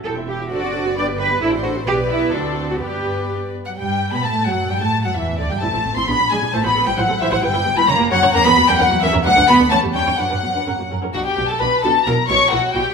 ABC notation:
X:1
M:2/4
L:1/16
Q:1/4=131
K:G
V:1 name="Violin section"
g e g e c d c d | g d g d c d c d | d4 d4 | d6 z f |
g3 b a2 f2 | g a2 f e2 d g | a3 c' b2 ^g2 | a b2 g f2 e f |
[K:Bm] g3 b ^a2 f2 | ^a b2 g f2 e z | f2 b2 a2 g2 | f6 z2 |
f g2 a b2 a2 | ^a2 c'2 f2 g2 |]
V:2 name="Violin section"
z4 d4 | B4 c4 | B4 A4 | B6 z f |
g3 b a2 f2 | g a2 f e2 d g | a3 c' b2 ^g2 | a b2 g f2 e f |
[K:Bm] g3 b ^a2 f2 | ^a b2 g f2 e z | f2 b2 a2 g2 | f6 z2 |
F G2 A B2 A2 | ^A2 c2 F2 G2 |]
V:3 name="Viola section"
[EG] [CE] [EG] [CE] [DA] [CF] [DA] [CF] | [DB] [B,G] [DB] [B,G] [DA] [CF] [DA] [CF] | [B,G]4 [CF]4 | [B,G]6 z2 |
G,3 B, A,2 F,2 | G, A,2 F, E,2 D, G, | [CE] [CE] [A,C] [CE] [D^G] [B,D] [DG] [DG] | [Ec] [Ec] [CA] [Ec] [Ec] [CA] [Ec] [Ec] |
[K:Bm] [EB] [EB] [B,G] [EB] [Cc] [^A,^A] [Cc] [Cc] | [C^A] [CA] [^A,F] [CA] [CA] [A,F] [CA] [CA] | [DB] [DB] [B,F] [DB] [Cc] [G,G] [Cc] [Cc] | [DB] [DB] [B,F] [DB] [C^A] [^A,F] [CA] [CA] |
[DF]2 [DF]2 [DF]2 [DF]2 | [EF]2 [EF]2 [EF]2 [EF]2 |]
V:4 name="Cello section" clef=bass
A2 G2 F4 | d2 B2 E2 F2 | G2 E2 D3 F | G4 z3 F, |
G,3 B, A,2 F,2 | G, A,2 F, E,2 D, G, | A,3 C B,2 ^G,2 | A, B,2 G, F,2 E, F, |
[K:Bm] G,3 B, ^A,2 F,2 | ^A, B,2 G, F,2 E, z | F,2 B,2 A,2 G,2 | F,6 z2 |
B,,2 B,,2 B,,2 B,,2 | B,,2 B,,2 B,,2 B,,2 |]
V:5 name="Double bass section" clef=bass
E,,,4 F,,,4 | G,,,4 A,,,4 | B,,,4 D,,4 | G,,6 z2 |
G,,3 B,, A,,2 F,,2 | G,, A,,2 F,, E,,2 D,, G,, | A,,, A,,, A,,, A,,, B,,, B,,, B,,, B,,, | A,,, A,,, A,,, A,,, A,,, A,,, A,,, A,,, |
[K:Bm] G,,, G,,, G,,, G,,, F,,, F,,, F,,, F,,, | E,, E,, E,, E,, E,, E,, E,, E,, | D,, D,, D,, D,, E,, E,, E,, E,, | F,, F,, F,, F,, F,, F,, F,, F,, |
B,,,2 B,,,2 B,,,2 B,,,2 | B,,,2 B,,,2 B,,,2 B,,,2 |]